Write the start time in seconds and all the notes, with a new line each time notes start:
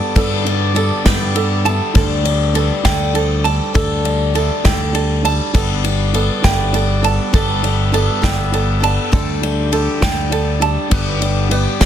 Already playing: G1 G2 G3 B3 D4 G4 A4 B4 D5 E5 G5 A5
0.15 G1 G2 G3 B3 D4 A4 D5, kick, ride
0.45 G3 B3 A4 D5, ride
0.74 G3 B3 D4 A4 D5, ride
1.04 G2 G3 B3 D4 A4 B4 G5, kick, snare, ride
1.35 G3 B3 A4 D5, ride
1.65 G3 B3 D4 A4 E5 A5, ride
1.94 D2 D3 G3 D4 A4 D5, kick, ride
2.23 G3 D4 A4 D5, ride
2.54 D3 G3 D4 A4 B4, ride
2.83 D2 D3 G3 D4 A4 D5 G5, kick, snare, ride
3.14 G3 D4 A4 C5, ride
3.44 G3 D4 A4 D5 A5, ride
3.74 D2 D3 G3 D4 A4 D5, kick, ride
4.04 G3 D4 A4 D5, ride
4.34 D3 G3 D4 A4 E5, ride
4.64 D2 D3 G3 D4 A4 D5 G5, kick, snare, ride
4.93 G3 D4 A4 D5, ride
5.23 G3 D4 A4 D5 A5, ride
5.53 G1 G2 G3 B3 D4 A4 B4 D5, kick, ride
5.84 G3 B3 A4 B4, ride
6.13 G3 B3 D4 A4 D5, ride
6.42 G1 G3 B3 D4 A4 E5 G5, kick, snare, ride
6.73 G3 B3 A4 D5, ride
7.02 G3 B3 D4 A4 D5 A5, ride
7.33 G1 G2 G3 B3 D4 A4 D5 E5, kick, ride
7.63 G3 B3 A4 D5, ride
7.92 G3 B3 D4 A4 D5, ride
8.22 G1 G3 B3 D4 A4 D5 G5, kick, snare, ride
8.52 G3 B3 A4 D5, ride
8.80 G3 B3 D4 A4 D5 A5, ride
9.12 D2 D3 G3 A3 D4 G4 A4 D5, kick, ride
9.42 G3 D4 A4 D5, ride
9.72 D3 G3 D4 A4 D5, ride
10.01 D2 D3 G3 D4 A4 D5 G5, kick, snare, ride
10.30 G3 D4 A4 D5, ride
10.60 G3 D4 A4 D5 A5, ride
10.90 G1 G2 D3 G3 B3 D4 G4 B4 D5, kick, ride
11.20 G3 D4 B4 D5, ride
11.49 G3 B3 D4 G4 B4 D5, ride
11.80 G1 G2 D3 G3 B3 D4 G4 B4 D5 G5, kick, snare, ride